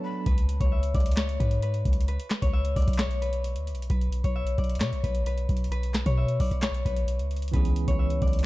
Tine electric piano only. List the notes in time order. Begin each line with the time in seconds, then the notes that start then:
Already playing: F#3 B3 D4 A4
7.51 E3 B3 C#4
7.56 G#4